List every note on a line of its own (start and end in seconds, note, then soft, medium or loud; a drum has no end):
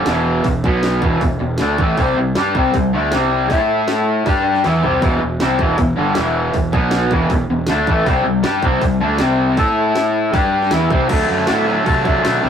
0.06 0.42 E1 medium
0.06 0.45 E2 medium
0.06 0.45 B2 medium
0.06 0.46 E3 loud
0.06 snare loud
0.06 open hi-hat medium
0.44 0.63 E1 medium
0.44 0.61 E2 medium
0.44 0.61 B2 medium
0.44 kick medium
0.44 open hi-hat medium
0.64 1.00 B1 medium
0.64 1.02 B2 medium
0.64 1.03 F#3 medium
0.64 1.03 B3 loud
0.64 kick loud
0.83 snare loud
0.83 open hi-hat medium
1.02 1.20 E1 medium
1.02 1.21 E2 loud
1.02 1.22 B2 medium
1.02 1.22 E3 loud
1.02 kick loud
1.21 1.39 E1 medium
1.21 1.38 E2 medium
1.21 1.38 B2 medium
1.21 kick loud
1.21 open hi-hat medium
1.40 1.58 E1 medium
1.40 1.56 E2 medium
1.40 1.56 B2 medium
1.58 1.78 D2 loud
1.58 1.78 D3 medium
1.58 1.79 A3 medium
1.58 snare loud
1.58 open hi-hat medium
1.62 1.79 D4 loud
1.78 1.96 A1 medium
1.78 1.97 A2 medium
1.78 1.98 E3 medium
1.78 1.99 A3 loud
1.78 kick loud
1.97 2.16 C2 loud
1.97 2.16 C3 medium
1.97 2.17 G3 loud
1.97 2.17 C4 loud
1.97 kick loud
1.97 open hi-hat medium
2.18 2.35 C2 medium
2.18 2.33 C3 medium
2.18 2.33 G3 medium
2.35 2.54 G2 loud
2.35 2.54 G3 loud
2.35 2.55 D4 loud
2.35 2.56 G4 loud
2.35 snare loud
2.35 open hi-hat medium
2.55 2.73 C2 loud
2.55 2.74 C3 medium
2.55 2.74 G3 loud
2.55 2.74 C4 loud
2.55 kick medium
2.74 2.92 C2 medium
2.74 2.90 C3 medium
2.74 2.90 G3 medium
2.74 kick loud
2.74 open hi-hat medium
2.93 3.12 D2 medium
2.93 3.12 D3 medium
2.93 3.13 A3 medium
2.93 3.13 D4 loud
3.12 3.48 C2 loud
3.12 3.50 C3 medium
3.12 3.50 G3 loud
3.12 3.52 C4 loud
3.12 snare loud
3.12 open hi-hat medium
3.50 4.22 A2 loud
3.50 4.26 A3 medium
3.50 4.27 E4 loud
3.50 4.27 A4 medium
3.50 kick loud
3.50 open hi-hat medium
3.88 snare loud
3.88 open hi-hat medium
4.26 4.62 G2 medium
4.26 4.64 G3 loud
4.26 4.64 D4 loud
4.26 4.65 G4 loud
4.26 kick loud
4.26 open hi-hat medium
4.55 snare soft
4.64 4.83 E2 loud
4.64 4.83 E3 medium
4.64 4.83 B3 medium
4.64 4.84 E4 loud
4.64 snare medium
4.64 open hi-hat medium
4.83 5.01 C2 medium
4.83 5.02 C3 medium
4.83 5.02 G3 loud
4.83 5.03 C4 loud
4.83 floor tom medium
5.01 5.20 E1 loud
5.01 5.20 E2 medium
5.01 5.20 B2 loud
5.01 5.21 E3 loud
5.01 kick loud
5.01 open hi-hat medium
5.21 5.40 E1 medium
5.21 5.37 E2 medium
5.21 5.37 B2 medium
5.40 5.58 C2 loud
5.40 5.59 C3 medium
5.40 5.60 G3 medium
5.40 5.60 C4 loud
5.40 snare loud
5.40 open hi-hat medium
5.59 5.77 E1 medium
5.59 5.77 E2 medium
5.59 5.77 B2 loud
5.59 5.79 E3 loud
5.59 kick loud
5.78 5.96 E1 medium
5.78 5.94 E2 medium
5.78 5.94 B2 medium
5.78 kick loud
5.78 open hi-hat medium
5.96 6.15 G1 medium
5.96 6.15 G2 medium
5.96 6.16 D3 medium
5.96 6.17 G3 loud
6.15 6.52 E1 loud
6.15 6.53 E2 medium
6.15 6.54 B2 medium
6.15 6.54 E3 loud
6.15 snare loud
6.15 open hi-hat medium
6.54 6.72 E1 medium
6.54 6.70 E2 medium
6.54 6.70 B2 medium
6.54 kick medium
6.54 open hi-hat medium
6.73 7.09 B1 medium
6.73 7.10 B2 loud
6.73 7.11 F#3 medium
6.73 7.12 B3 loud
6.73 kick loud
6.91 snare loud
6.91 open hi-hat medium
7.11 7.29 E1 loud
7.11 7.30 E2 medium
7.11 7.30 B2 medium
7.11 7.31 E3 loud
7.11 kick loud
7.30 7.48 E1 medium
7.30 7.46 E2 medium
7.30 7.46 B2 medium
7.30 kick medium
7.30 open hi-hat medium
7.49 7.67 E1 medium
7.49 7.65 E2 medium
7.49 7.65 B2 medium
7.67 7.86 D2 loud
7.67 7.87 D3 medium
7.67 7.88 A3 medium
7.67 snare loud
7.67 open hi-hat medium
7.71 7.88 D4 loud
7.87 8.05 A1 medium
7.87 8.06 A2 loud
7.87 8.06 E3 loud
7.87 8.07 A3 loud
7.87 kick loud
8.06 8.24 C2 loud
8.06 8.24 C3 medium
8.06 8.24 G3 loud
8.06 8.26 C4 loud
8.06 kick loud
8.06 open hi-hat medium
8.25 8.43 C2 medium
8.25 8.40 C3 medium
8.25 8.41 G3 medium
8.43 8.62 G2 loud
8.43 8.62 G3 medium
8.43 8.63 D4 loud
8.43 8.63 G4 medium
8.43 snare loud
8.43 open hi-hat medium
8.62 8.80 C2 loud
8.62 8.81 C3 medium
8.62 8.81 G3 medium
8.62 8.82 C4 loud
8.62 kick loud
8.81 9.00 C2 medium
8.81 8.97 C3 medium
8.81 8.97 G3 medium
8.81 kick loud
8.81 open hi-hat medium
9.00 9.19 D2 medium
9.00 9.19 D3 medium
9.00 9.19 A3 loud
9.00 9.20 D4 loud
9.18 9.55 C2 loud
9.18 9.57 C3 medium
9.18 9.57 G3 medium
9.18 9.57 C4 loud
9.18 snare loud
9.18 open hi-hat medium
9.57 10.30 A2 medium
9.57 10.32 A3 medium
9.57 10.33 E4 medium
9.57 10.34 A4 medium
9.57 kick loud
9.57 open hi-hat medium
9.95 snare loud
9.95 open hi-hat medium
10.32 10.69 G2 medium
10.32 10.71 G3 loud
10.32 10.71 D4 loud
10.32 10.72 G4 loud
10.32 kick loud
10.32 open hi-hat medium
10.62 snare soft
10.71 10.90 E2 medium
10.71 10.89 E3 medium
10.71 10.90 B3 medium
10.71 10.91 E4 loud
10.71 snare loud
10.71 open hi-hat medium
10.90 11.08 C2 medium
10.90 11.07 C3 loud
10.90 11.08 G3 loud
10.90 11.09 C4 loud
10.90 kick loud
11.08 11.24 D2 medium
11.08 11.27 D3 medium
11.08 11.28 F#3 medium
11.08 11.29 A3 loud
11.08 11.29 D4 loud
11.08 kick loud
11.08 crash loud
11.08 crash medium
11.28 11.43 F#2 medium
11.28 11.46 D3 medium
11.28 11.47 F#3 medium
11.28 11.47 A3 medium
11.28 11.48 D4 medium
11.47 11.77 A2 loud
11.47 11.65 D3 loud
11.47 11.65 F#3 medium
11.47 11.66 A3 loud
11.47 11.67 D4 loud
11.47 snare loud
11.47 crash medium
11.66 11.83 D3 medium
11.66 11.83 F#3 medium
11.66 11.84 A3 medium
11.66 11.85 D4 medium
11.84 12.14 C3 medium
11.84 12.02 D3 loud
11.84 12.02 F#3 loud
11.84 12.03 A3 loud
11.84 12.04 D4 loud
11.84 kick medium
11.84 crash medium
12.03 12.20 D3 medium
12.03 12.21 F#3 medium
12.03 12.22 A3 loud
12.03 12.23 D4 loud
12.03 kick medium
12.22 12.38 B2 medium
12.22 12.40 D3 loud
12.22 12.41 F#3 medium
12.22 12.41 A3 medium
12.22 12.42 D4 loud
12.22 snare loud
12.22 crash medium
12.42 12.49 C2 medium
12.42 12.49 C3 loud
12.42 12.49 G3 loud
12.42 12.49 C4 loud
12.42 12.49 E4 loud